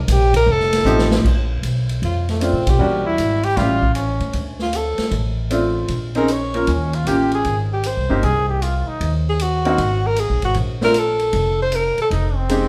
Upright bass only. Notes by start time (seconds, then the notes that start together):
0.08 A#1
0.47 F1
0.84 A1
1.25 A#1
1.63 B1
2.02 F2
2.53 A#2
2.66 B2
2.79 E2
3.18 G#1
3.57 A1
4.20 A2
4.34 D2
4.98 muted upright bass stroke
5.11 A1
5.89 A#1
6.68 D#2
7.05 A1
7.45 G#1
7.97 C2
8.09 G1
8.23 C2
8.89 muted upright bass stroke
9.01 D#2
9.78 G#1
10.30 A#1
10.43 G#1
10.56 A#1
11.33 F1
11.98 muted upright bass stroke
12.11 F1